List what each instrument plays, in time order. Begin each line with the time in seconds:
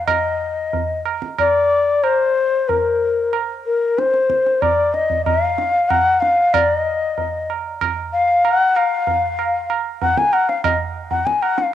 0.07 bansuri D#5, tabla na, tabla ge
0.73 tabla tin, tabla ge
1.05 tabla na
1.22 tabla ke
1.39 bansuri D5, tabla na, tabla ge
2.04 bansuri C5, tabla na
2.69 bansuri A#4, tabla tin, tabla ge
3.33 tabla na
3.66 bansuri A#4
3.98 bansuri C5, tabla te
4.14 tabla te
4.30 tabla ke
4.46 tabla te
4.61 bansuri D5, tabla na, tabla ge
4.94 bansuri D#5, tabla te
5.10 tabla ge
5.25 bansuri D#5, tabla na, tabla ge
5.43 bansuri F5
5.58 tabla te
5.89 bansuri F#5, tabla na, tabla ge
6.21 bansuri F5, tabla te
6.54 bansuri D5, tabla na, tabla ge
6.78 bansuri D#5
7.18 tabla tin, tabla ge
7.50 tabla na
7.81 tabla na, tabla ge
8.13 bansuri F5
8.45 bansuri F#5, tabla na
8.76 bansuri F5, tabla na
9.07 tabla tin, tabla ge
9.39 tabla na
9.70 tabla na
10.02 bansuri F#5, tabla tin, tabla ge
10.17 bansuri G#5, tabla ke
10.33 bansuri F#5, tabla na
10.49 bansuri F5, tabla te
10.64 bansuri D#5, tabla na, tabla ge
11.11 bansuri F#5, tabla tin, tabla ge
11.26 bansuri G#5, tabla ke
11.42 bansuri F#5, tabla na
11.58 bansuri F5, tabla te